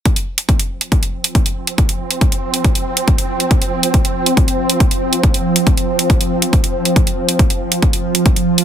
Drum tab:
HH |xx-xxx-xxx-xxx-x|xx-xxx-xxx-xxx-x|xx-xxx-xxx-xxx-x|xx-xxx-xxx-xxx-x|
BD |o---o---o---o---|o---o---o---o---|o---o---o---o---|o---o---o---o---|

HH |xx-xxx-xxx-xxx-x|
BD |o---o---o---o---|